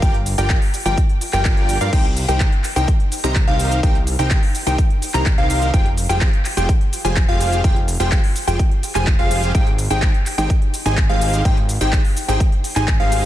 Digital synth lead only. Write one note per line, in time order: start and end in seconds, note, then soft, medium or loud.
0.02 0.15 G5 medium
0.38 0.58 G5 loud
0.86 0.98 G5 loud
1.33 1.78 G5 loud
1.81 1.91 F5 loud
1.93 2.05 G5 medium
2.28 2.49 G5 loud
2.76 2.89 G5 loud
3.24 3.36 A#5 loud
3.48 3.80 F5 loud
3.83 3.96 G5 medium
4.19 4.39 G5 loud
4.67 4.79 G5 loud
5.14 5.27 A#5 loud
5.38 5.71 F5 loud
5.74 5.86 G5 medium
6.09 6.30 G5 loud
6.57 6.70 G5 loud
7.05 7.17 G#5 loud
7.29 7.61 F5 loud
7.64 7.77 G5 loud
8.00 8.20 G5 loud
8.47 8.60 G5 loud
8.95 9.08 G#5 loud
9.19 9.52 F5 loud
9.55 9.67 G5 loud
9.91 10.11 G5 loud
10.38 10.51 G5 loud
10.86 10.98 G#5 loud
11.09 11.42 F5 loud
11.45 11.58 G5 medium
11.81 12.01 G5 loud
12.28 12.41 G5 loud
12.76 12.89 G#5 loud
13.00 13.25 F5 loud